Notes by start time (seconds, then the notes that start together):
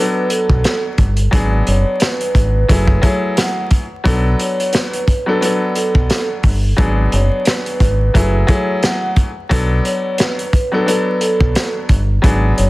Already playing: F#3 B3 D4 B4
0.00 A4
0.29 A4, closed hi-hat
0.50 B1, kick
0.64 snare, closed hi-hat
0.98 G1, kick, closed hi-hat
1.17 closed hi-hat
1.31 G#1 F#3 B3 D4 G#4, kick, closed hi-hat
1.67 F#1 C#5, closed hi-hat
2.00 B4, snare, closed hi-hat
2.21 closed hi-hat
2.35 G#1, kick, closed hi-hat
2.68 F#1 F#3 A3 E4 G#4, kick, closed hi-hat
2.88 kick
3.02 F#3 A3 E4 G#4 C#5, kick, closed hi-hat
3.36 F#5, snare, closed hi-hat
3.71 kick, closed hi-hat
4.04 B1 F#3 B3 D4 A4, kick, closed hi-hat
4.39 C#5, closed hi-hat
4.60 closed hi-hat
4.73 B4, snare, closed hi-hat
4.93 closed hi-hat
5.07 B4, kick, closed hi-hat
5.26 F#3 B3 D4 A4
5.41 F#3 B3 D4 A4, closed hi-hat
5.75 A4, closed hi-hat
5.95 B1, kick
6.10 snare, closed hi-hat
6.43 G1, kick, open hi-hat
6.76 G#1 F#3 B3 D4 G#4, kick, closed hi-hat
7.12 F#1 C#5, closed hi-hat
7.45 B4, snare, closed hi-hat
7.66 closed hi-hat
7.80 G#1 B4, kick, closed hi-hat
8.14 F#1 F#3 A3 E4 G#4, kick, closed hi-hat
8.47 F#3 A3 E4 G#4 C#5, kick, closed hi-hat
8.83 F#5, snare, closed hi-hat
9.16 kick, closed hi-hat
9.49 B1 F#3 B3 D4 A4, kick, closed hi-hat
9.84 C#5, closed hi-hat
10.18 B4, snare, closed hi-hat
10.39 closed hi-hat
10.53 B4, kick, closed hi-hat
10.72 F#3 B3 D4 A4
10.86 F#3 B3 D4 A4, closed hi-hat
11.20 A4, closed hi-hat
11.41 B1, kick
11.55 snare, closed hi-hat
11.89 G1, kick, closed hi-hat
12.22 G#1 F#3 B3 D4 G#4, kick, closed hi-hat
12.58 F#1 C#5, closed hi-hat